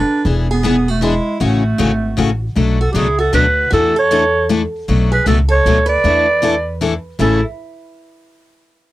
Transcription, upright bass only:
0.25 E1
1.41 A1
1.79 G#1
2.18 A1
2.56 B1
2.94 C#2
3.33 D2
3.72 E2
4.89 B1
5.26 C#2
5.65 D2
6.04 E2
7.19 A1

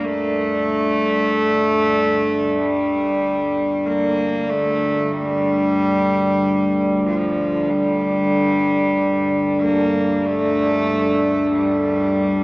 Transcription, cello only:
0.04 A3
2.59 G3
3.86 A#3
4.49 A3
5.12 G3
7.06 F3
7.69 G3
9.61 A#3
10.25 A3
11.53 G3

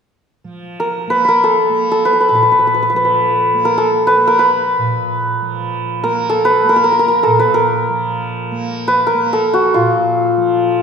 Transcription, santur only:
0.80 A#4
1.10 B4
1.25 A#4 B4
1.44 A4
1.92 A4
2.05 B4
2.13 B4
2.20 B4
2.29 B4
2.35 B4
2.43 B4
2.52 B4
2.59 B4
2.67 B4
2.74 B4
2.83 B4
2.90 B4
2.96 B4
3.05 B4
3.65 A#4
3.78 A4
4.07 B4
4.27 A#4
4.39 B4
6.04 A#4
6.29 A4
6.45 B4
6.69 A#4
6.76 A#4
6.84 A#4
6.92 A#4
6.99 A#4
7.08 A#4
7.23 A4
7.39 B4
7.54 A#4
8.88 B4
9.07 A#4
9.33 A4
9.54 F#4
9.74 F4

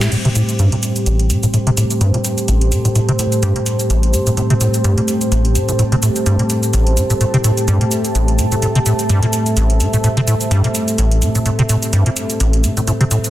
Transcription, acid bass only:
0.12 A2
0.25 C3
0.36 A2
0.59 G2
0.72 A#2
1.07 A1
1.30 A2
1.43 A2
1.54 A2
1.67 C3
1.77 A2
2.01 G2
2.14 A#2
2.48 A1
2.72 A2
2.85 A2
2.95 A2
3.09 C3
3.19 A2
3.43 G2
3.56 A#2
3.90 A1
4.14 A2
4.27 A2
4.37 A2
4.50 C3
4.61 A2
4.84 G2
4.98 A#2
5.32 A1
5.55 A2
5.69 A2
5.79 A2
5.92 C3
6.03 A2
6.26 G2
6.39 A#2
6.73 A1
6.97 A2
7.10 A2
7.21 A2
7.34 C3
7.44 A2
7.68 G2
7.81 A#2
8.15 A1
8.39 A2
8.52 A2
8.62 A2
8.76 C3
8.86 A2
9.10 G2
9.23 A#2
9.57 A1
9.80 A2
9.93 A2
10.04 A2
10.17 C3
10.27 A2
10.51 G2
10.64 A#2
10.98 A1
11.22 A2
11.35 A2
11.46 A2
11.59 C3
11.69 A2
11.93 G2
12.06 A#2
12.40 A1
12.64 A2
12.77 A2
12.88 A2
13.01 C3
13.11 A2

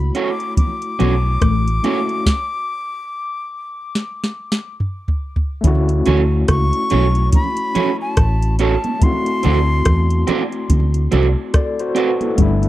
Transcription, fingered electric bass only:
1.01 B1
1.42 A1
5.65 D2
6.07 D2
6.49 C#2
6.93 B1
8.18 A1
9.45 D2
9.87 E2
10.70 D2
11.13 C2
12.39 G1

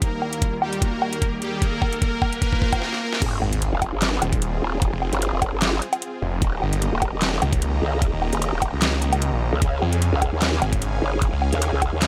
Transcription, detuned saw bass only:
3.42 G#1
4.22 D#1
4.42 D#1
4.93 F1
6.22 F1
6.62 G1
7.42 C#2
7.62 C#2
8.13 D#1
8.73 C#2
9.33 A#1
9.82 F2
10.62 G#1
10.82 G#1
11.33 C#2

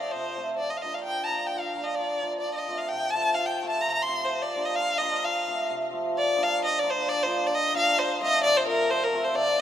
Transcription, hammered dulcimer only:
Already playing: C3 F3 A3 C4 F4
0.15 C3
0.37 F3 A3 C4 F4
0.61 F3
0.83 F3 A#3 D4 F4
1.07 F3
1.29 F3 A#3 D4 F4
1.55 F3
1.75 F3 A#3 D4 F4
2.00 F3
2.22 F3 A#3 D4 F4
2.45 F3
2.68 F3 A3 C4 F4
2.91 C3
3.14 F3 A3 C4 F4
3.39 F3
3.63 F3 A3 C4 F4
3.85 C3
4.08 F3 A3 C4 F4
4.33 F3
4.55 F3 A#3 D4 F4
4.79 F3
5.00 F3 A#3 D4 F4
5.25 F3
5.48 F3 A3 C4 F4
5.70 C3
5.91 F3 A3 C4 F4
6.15 F3
6.36 F3 A#3 D4 F4
6.60 F3
6.82 F3 A#3 D4 F4
7.05 F3
7.25 F3 A#3 D4 F4
7.51 F3
7.74 F3 A#3 D4 F4
7.97 F3
8.20 F3 A3 C4 F4
8.45 C3
8.66 F3 A3 C4 F4
8.91 F3
9.13 F3 A3 C4 F4
9.34 C3
9.57 F3 A3 C4

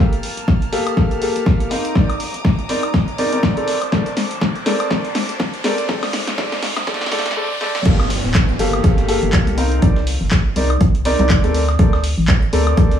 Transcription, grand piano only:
0.00 A#3 G4 A4 F5
0.72 A#3 G4 A4 F5
0.97 A#3 G4 A4 F5
1.22 A#3 G4 A4 F5
1.71 C4 D#4 A#4 F5
1.95 C4 D#4 A#4 D5
2.69 C4 D#4 A#4 D5
3.18 C4 D#4 A#4 D5
3.33 C4 D#4 A#4 D5
3.57 C4 A4 A#4 D5
3.92 C4 A4 A#4 D5
4.66 C4 A4 A#4 D5
4.90 C4 A4 A#4 D5
5.64 C4 A4 A#4 D5
5.89 C4 A4 D5
6.38 C4 A4 D5
6.87 C4 A4 D5
7.12 C4 A4 D5
7.36 C4 A4 D5
7.61 C4 A4 D5
7.86 A#3 G4 A4 F5
8.59 A#3 G4 A4 F5
8.84 A#3 G4 A4 F5
9.09 A#3 G4 A4 F5
9.58 C4 D#4 A#4 F5
9.82 C4 D#4 A#4 D5
10.56 C4 D#4 A#4 D5
11.05 C4 D#4 A#4 D5
11.19 C4 D#4 A#4 D5
11.44 C4 A4 A#4 D5
11.79 C4 A4 A#4 D5
12.53 C4 A4 A#4 D5
12.77 C4 A4 A#4 D5

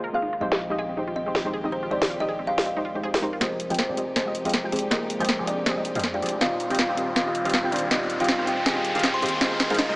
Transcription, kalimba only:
0.14 F5
0.41 D#5
0.79 D#5
1.16 D#5
1.72 C5
1.91 D5
2.20 D#5
2.47 F5
2.66 D#5
3.14 A#4
3.41 C4 C5
3.78 C4 C5
4.16 C4 C5
4.72 G#3 G#4
4.91 A#3 A#4
5.20 C4 C5
5.47 D4 D5
5.66 C4 C5
6.14 D4 D5
6.41 F4 F5
6.78 F4 F5
7.16 F4 F5
7.72 D4 D5
7.91 D#4 D#5
8.20 F4 F5
8.47 G4 G5
8.66 G#4 G#5
9.14 C5 C6
9.41 D#4 D#5
9.79 D#4 D#5

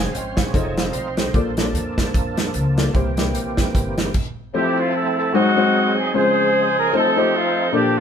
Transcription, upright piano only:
Already playing: F5 G#5
0.14 D#5 G5
0.37 C#5 F5
0.54 A3 D#4 F4 C5
0.78 D5 F5
0.94 D5
1.18 A4 C5
1.34 A#2 A#3 F4 A4 D5
1.57 A#3 F4 A4 C#5
1.63 D5
2.77 A#3 F4 A4 D5
2.94 C3 A#3 E4 G4 C5
3.17 A#3 E4 G4 D5
4.54 F3 A3 C4 E4 C5
5.33 G#2 G#3 C4 D#4 F#4 C5
5.56 G#3 C4 D#4 F#4 C5
6.13 G#3 C4 C#4 F4 C5
6.93 A3 C4 D#4 F4 C5
7.16 A3 C4 D#4 F4 C5
7.72 A#2 A#3 D4 F4 A4 D5

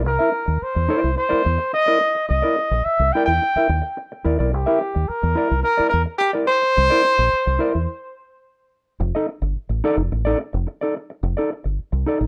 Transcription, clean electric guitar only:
0.04 muted clean electric guitar stroke
0.19 E4 A#4 E5
0.32 muted clean electric guitar stroke
0.46 muted clean electric guitar stroke
0.75 muted clean electric guitar stroke
0.88 E4 A#4 D5
1.03 muted clean electric guitar stroke
1.16 muted clean electric guitar stroke
1.29 E4 A#4 D5
1.44 muted clean electric guitar stroke
1.58 muted clean electric guitar stroke
1.73 muted clean electric guitar stroke
1.86 E4 A#4 D5
2.01 muted clean electric guitar stroke
2.15 muted clean electric guitar stroke
2.29 muted clean electric guitar stroke
2.42 E4 A#4 D5
2.58 muted clean electric guitar stroke
2.72 muted clean electric guitar stroke
3.01 muted clean electric guitar stroke
3.15 E4 A#4 D5
3.29 muted clean electric guitar stroke
3.42 muted clean electric guitar stroke
3.56 E4 A#4 E5
3.69 muted clean electric guitar stroke
3.82 muted clean electric guitar stroke
3.97 muted clean electric guitar stroke
4.12 muted clean electric guitar stroke
4.24 E4 A#4 D5
4.39 E4 A#4 D5
4.52 muted clean electric guitar stroke
4.66 E4 A#4 E5
4.81 muted clean electric guitar stroke
4.95 muted clean electric guitar stroke
5.23 muted clean electric guitar stroke
5.35 E4 A#4 D5
5.50 muted clean electric guitar stroke
5.63 muted clean electric guitar stroke
5.77 E4 A#4 D5
5.92 muted clean electric guitar stroke
6.06 muted clean electric guitar stroke
6.21 muted clean electric guitar stroke
6.33 E4 A#4 D5
6.48 muted clean electric guitar stroke
6.62 muted clean electric guitar stroke
6.77 muted clean electric guitar stroke
6.90 E4 A#4 D5
7.05 muted clean electric guitar stroke
7.18 muted clean electric guitar stroke
7.46 muted clean electric guitar stroke
7.59 E4 A#4 D5
7.75 muted clean electric guitar stroke
9.00 muted clean electric guitar stroke
9.15 D#4 A4 D#5
9.29 muted clean electric guitar stroke
9.42 muted clean electric guitar stroke
9.69 muted clean electric guitar stroke
9.84 D#4 A4 D5
9.98 muted clean electric guitar stroke
10.12 muted clean electric guitar stroke
10.25 D#4 A4 D5
10.40 muted clean electric guitar stroke
10.53 muted clean electric guitar stroke
10.67 muted clean electric guitar stroke
10.81 D#4 A4 D5
10.97 muted clean electric guitar stroke
11.10 muted clean electric guitar stroke
11.23 muted clean electric guitar stroke
11.37 D#4 A4 D5
11.52 muted clean electric guitar stroke
11.64 muted clean electric guitar stroke
11.92 muted clean electric guitar stroke
12.06 D#4 A4 D5
12.21 muted clean electric guitar stroke

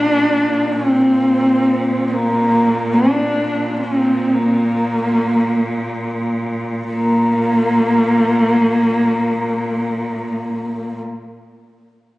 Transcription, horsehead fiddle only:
Already playing: D4
0.72 C4
2.09 C4
2.14 A#3
2.93 D4
3.81 C#4
3.98 C4
4.35 A#3
6.93 A#3

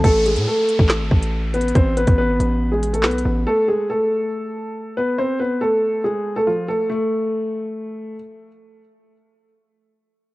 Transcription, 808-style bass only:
0.04 A1
0.36 A2
0.79 A1
1.00 G#1
1.11 A1
1.76 A1
2.08 A1
2.29 G#1
2.40 A1
3.04 B1
3.25 A1

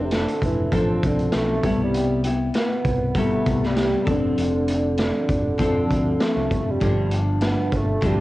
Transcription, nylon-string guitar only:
Already playing: C4 D4 A4
0.13 C4 D4 A4
0.72 F3 C4 D4 A4
1.63 C3 G3 B3 E4 G4
2.24 B3 E4 G4
3.16 C3 G3 B3 E4 G4
4.05 C4 D4 A4
4.10 F3
5.58 F3 C4 D4
5.63 A4
6.80 G2 D3 F3
6.86 D4
8.01 G2 D3 F3
8.05 C4 D4

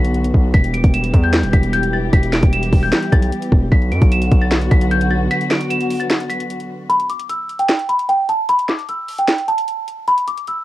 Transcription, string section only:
Already playing: D3 F#3 B3 F#4
0.54 E3 G3 G4
3.72 D3 F#3 B3 F#4

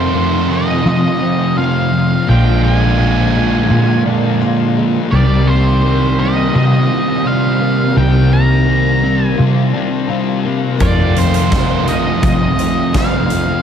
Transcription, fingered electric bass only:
Already playing: F2
0.85 F3
2.29 A#1
3.70 A#2
5.12 C2
6.55 C3
7.96 C2
9.39 C3
10.80 F2
12.23 F3

